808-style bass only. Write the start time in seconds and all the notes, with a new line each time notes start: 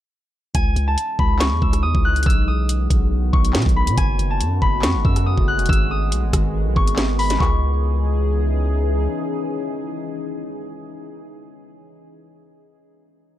0.55 C#2
0.76 C#2
1.19 C#2
1.52 E2
1.62 C#2
1.83 E2
1.95 C#2
2.26 B1
2.90 B1
3.33 B1
3.55 B2
3.66 B1
3.88 B2
3.98 F#1
4.19 F#1
4.40 F#2
4.62 F#1
4.83 F#2
4.95 F#1
5.05 F#2
5.38 F#1
5.59 E1
5.69 G#1
6.12 B1
6.23 G#1
6.33 G#1
6.66 B1
6.76 G#1
7.40 C#2